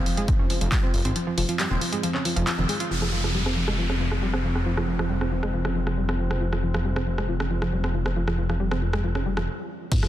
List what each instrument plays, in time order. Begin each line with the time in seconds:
Already playing: synth drone F3 C4
0.06 synth arpeggio sound F3, open hi-hat
0.17 synth arpeggio sound G#3, closed hi-hat
0.28 synth arpeggio sound F3, kick, closed hi-hat
0.39 detuned saw bass F1, synth arpeggio sound C#4
0.50 synth arpeggio sound F3, open hi-hat
0.61 detuned saw bass F1, synth arpeggio sound F3, closed hi-hat
0.72 synth arpeggio sound G3, kick, clap, closed hi-hat
0.83 synth arpeggio sound C4
0.94 detuned saw bass F1, synth arpeggio sound F3, open hi-hat
1.05 detuned saw bass G#1, synth arpeggio sound C4, closed hi-hat
1.16 synth arpeggio sound F3, closed hi-hat
1.27 synth arpeggio sound F3
1.38 detuned saw bass F1, synth arpeggio sound F3, open hi-hat
1.49 synth arpeggio sound F3, closed hi-hat
1.59 synth arpeggio sound G3, clap, closed hi-hat
1.71 detuned saw bass D#1, synth arpeggio sound C4
1.81 synth arpeggio sound F3, open hi-hat
1.92 synth arpeggio sound G#3, closed hi-hat
2.03 synth arpeggio sound F3, closed hi-hat
2.14 synth arpeggio sound C#4, clap
2.25 synth arpeggio sound F3, open hi-hat
2.36 detuned saw bass F1, synth arpeggio sound F3, closed hi-hat
2.47 synth arpeggio sound F3, clap, closed hi-hat
2.58 detuned saw bass F1, synth arpeggio sound D#3
2.69 synth arpeggio sound G#3, open hi-hat
2.80 synth arpeggio sound F4, closed hi-hat
2.91 detuned saw bass F1, synth arpeggio sound F3, synth drone F3 C4, downlifter
3.02 synth arpeggio sound F3, cross-stick
3.13 synth arpeggio sound F3
3.24 synth arpeggio sound F3, cross-stick
3.35 synth arpeggio sound G3
3.46 synth arpeggio sound C4, cross-stick
3.57 synth arpeggio sound F3
3.68 synth arpeggio sound G#3, cross-stick
3.79 synth arpeggio sound F3
3.90 synth arpeggio sound C#4, cross-stick
4.00 synth arpeggio sound F3
4.11 synth arpeggio sound F3, cross-stick
4.22 synth arpeggio sound G3
4.33 synth arpeggio sound C4, cross-stick
4.44 synth arpeggio sound F3
4.55 synth arpeggio sound C4, cross-stick
4.66 synth arpeggio sound F3
4.77 synth arpeggio sound F3, cross-stick
4.88 synth arpeggio sound F3
4.99 synth arpeggio sound F3, cross-stick
5.10 synth arpeggio sound G3
5.21 synth arpeggio sound C4, cross-stick
5.32 synth arpeggio sound F3
5.43 synth arpeggio sound G#3, cross-stick
5.54 synth arpeggio sound F3
5.65 synth arpeggio sound C#4, cross-stick
5.76 synth arpeggio sound F3
5.87 synth arpeggio sound F3, cross-stick
5.98 synth arpeggio sound G3
6.09 synth arpeggio sound C4, cross-stick
6.19 synth arpeggio sound F3
6.30 synth arpeggio sound C4, cross-stick
6.41 synth arpeggio sound F3
6.52 synth arpeggio sound F3, cross-stick
6.63 synth arpeggio sound F3
6.74 synth arpeggio sound F3, cross-stick
6.85 synth arpeggio sound G3
6.96 synth arpeggio sound C4, cross-stick
7.07 synth arpeggio sound F3
7.18 synth arpeggio sound G#3, cross-stick
7.29 synth arpeggio sound F3
7.40 synth arpeggio sound C#4, cross-stick
7.51 synth arpeggio sound F3
7.62 synth arpeggio sound F3, cross-stick
7.73 synth arpeggio sound G3
7.84 synth arpeggio sound C4, cross-stick
7.95 synth arpeggio sound F3
8.06 synth arpeggio sound C4, cross-stick
8.16 synth arpeggio sound F3
8.28 synth arpeggio sound F3, cross-stick
8.38 synth arpeggio sound F3
8.49 synth arpeggio sound F3, cross-stick
8.60 synth arpeggio sound G3
8.71 synth arpeggio sound C4, cross-stick
8.82 synth arpeggio sound F3
8.93 synth arpeggio sound G#3, cross-stick
9.04 synth arpeggio sound F3
9.15 synth arpeggio sound C#4, cross-stick
9.26 synth arpeggio sound G3
9.37 synth arpeggio sound F3, cross-stick
9.92 synth arpeggio sound F3, kick, closed hi-hat, crash, tambourine, sub drop
10.03 synth arpeggio sound F3, cross-stick, tambourine